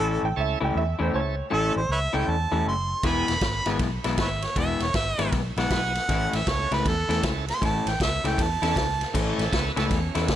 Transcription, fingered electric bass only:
0, 0, Header, 1, 2, 480
1, 0, Start_track
1, 0, Key_signature, 3, "major"
1, 0, Tempo, 381679
1, 1901, Time_signature, 4, 2, 24, 8
1, 13025, End_track
2, 0, Start_track
2, 0, Title_t, "Fingered electric bass"
2, 0, Program_c, 0, 33
2, 0, Note_on_c, 0, 33, 83
2, 213, Note_off_c, 0, 33, 0
2, 288, Note_on_c, 0, 33, 80
2, 413, Note_off_c, 0, 33, 0
2, 466, Note_on_c, 0, 37, 85
2, 685, Note_off_c, 0, 37, 0
2, 774, Note_on_c, 0, 37, 81
2, 896, Note_off_c, 0, 37, 0
2, 949, Note_on_c, 0, 40, 81
2, 1166, Note_off_c, 0, 40, 0
2, 1254, Note_on_c, 0, 40, 82
2, 1376, Note_off_c, 0, 40, 0
2, 1433, Note_on_c, 0, 37, 72
2, 1773, Note_off_c, 0, 37, 0
2, 1916, Note_on_c, 0, 33, 80
2, 2131, Note_off_c, 0, 33, 0
2, 2216, Note_on_c, 0, 33, 78
2, 2337, Note_off_c, 0, 33, 0
2, 2376, Note_on_c, 0, 37, 84
2, 2597, Note_off_c, 0, 37, 0
2, 2689, Note_on_c, 0, 37, 78
2, 2813, Note_off_c, 0, 37, 0
2, 2863, Note_on_c, 0, 40, 74
2, 3082, Note_off_c, 0, 40, 0
2, 3167, Note_on_c, 0, 40, 79
2, 3291, Note_off_c, 0, 40, 0
2, 3336, Note_on_c, 0, 30, 75
2, 3682, Note_off_c, 0, 30, 0
2, 3814, Note_on_c, 0, 28, 85
2, 4036, Note_off_c, 0, 28, 0
2, 4138, Note_on_c, 0, 28, 75
2, 4258, Note_off_c, 0, 28, 0
2, 4293, Note_on_c, 0, 32, 82
2, 4516, Note_off_c, 0, 32, 0
2, 4602, Note_on_c, 0, 32, 74
2, 4728, Note_off_c, 0, 32, 0
2, 4773, Note_on_c, 0, 35, 76
2, 4996, Note_off_c, 0, 35, 0
2, 5090, Note_on_c, 0, 35, 84
2, 5213, Note_off_c, 0, 35, 0
2, 5256, Note_on_c, 0, 32, 77
2, 5603, Note_off_c, 0, 32, 0
2, 5734, Note_on_c, 0, 28, 81
2, 5957, Note_off_c, 0, 28, 0
2, 6039, Note_on_c, 0, 28, 80
2, 6167, Note_off_c, 0, 28, 0
2, 6217, Note_on_c, 0, 32, 80
2, 6438, Note_off_c, 0, 32, 0
2, 6526, Note_on_c, 0, 32, 78
2, 6651, Note_off_c, 0, 32, 0
2, 6698, Note_on_c, 0, 35, 80
2, 6919, Note_off_c, 0, 35, 0
2, 7000, Note_on_c, 0, 35, 84
2, 7127, Note_off_c, 0, 35, 0
2, 7176, Note_on_c, 0, 35, 78
2, 7523, Note_off_c, 0, 35, 0
2, 7654, Note_on_c, 0, 33, 87
2, 7877, Note_off_c, 0, 33, 0
2, 7963, Note_on_c, 0, 33, 85
2, 8090, Note_off_c, 0, 33, 0
2, 8139, Note_on_c, 0, 37, 89
2, 8360, Note_off_c, 0, 37, 0
2, 8442, Note_on_c, 0, 37, 86
2, 8569, Note_off_c, 0, 37, 0
2, 8617, Note_on_c, 0, 40, 85
2, 8839, Note_off_c, 0, 40, 0
2, 8913, Note_on_c, 0, 40, 83
2, 9043, Note_off_c, 0, 40, 0
2, 9097, Note_on_c, 0, 37, 76
2, 9444, Note_off_c, 0, 37, 0
2, 9582, Note_on_c, 0, 33, 90
2, 9803, Note_off_c, 0, 33, 0
2, 9886, Note_on_c, 0, 33, 79
2, 10012, Note_off_c, 0, 33, 0
2, 10062, Note_on_c, 0, 37, 81
2, 10283, Note_off_c, 0, 37, 0
2, 10364, Note_on_c, 0, 37, 81
2, 10491, Note_off_c, 0, 37, 0
2, 10539, Note_on_c, 0, 40, 75
2, 10761, Note_off_c, 0, 40, 0
2, 10839, Note_on_c, 0, 40, 79
2, 10968, Note_off_c, 0, 40, 0
2, 11020, Note_on_c, 0, 37, 77
2, 11366, Note_off_c, 0, 37, 0
2, 11497, Note_on_c, 0, 33, 87
2, 11720, Note_off_c, 0, 33, 0
2, 11801, Note_on_c, 0, 33, 79
2, 11930, Note_off_c, 0, 33, 0
2, 11975, Note_on_c, 0, 37, 86
2, 12199, Note_off_c, 0, 37, 0
2, 12283, Note_on_c, 0, 37, 78
2, 12411, Note_off_c, 0, 37, 0
2, 12458, Note_on_c, 0, 40, 81
2, 12681, Note_off_c, 0, 40, 0
2, 12770, Note_on_c, 0, 40, 79
2, 12895, Note_off_c, 0, 40, 0
2, 12935, Note_on_c, 0, 37, 82
2, 13025, Note_off_c, 0, 37, 0
2, 13025, End_track
0, 0, End_of_file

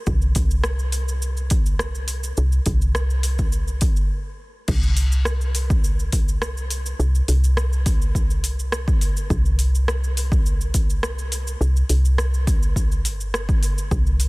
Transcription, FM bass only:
0, 0, Header, 1, 2, 480
1, 0, Start_track
1, 0, Tempo, 576923
1, 60, Time_signature, 4, 2, 24, 8
1, 11884, End_track
2, 0, Start_track
2, 0, Title_t, "FM bass"
2, 0, Program_c, 0, 39
2, 59, Note_on_c, 0, 36, 98
2, 1932, Note_off_c, 0, 36, 0
2, 1978, Note_on_c, 0, 36, 92
2, 2160, Note_off_c, 0, 36, 0
2, 2216, Note_on_c, 0, 36, 88
2, 3176, Note_on_c, 0, 31, 97
2, 3189, Note_off_c, 0, 36, 0
2, 3418, Note_off_c, 0, 31, 0
2, 3897, Note_on_c, 0, 36, 101
2, 5771, Note_off_c, 0, 36, 0
2, 5820, Note_on_c, 0, 36, 102
2, 6001, Note_off_c, 0, 36, 0
2, 6060, Note_on_c, 0, 36, 89
2, 7574, Note_off_c, 0, 36, 0
2, 7740, Note_on_c, 0, 36, 100
2, 9613, Note_off_c, 0, 36, 0
2, 9658, Note_on_c, 0, 36, 99
2, 9840, Note_off_c, 0, 36, 0
2, 9898, Note_on_c, 0, 36, 85
2, 10856, Note_on_c, 0, 31, 99
2, 10868, Note_off_c, 0, 36, 0
2, 11291, Note_off_c, 0, 31, 0
2, 11575, Note_on_c, 0, 36, 98
2, 11884, Note_off_c, 0, 36, 0
2, 11884, End_track
0, 0, End_of_file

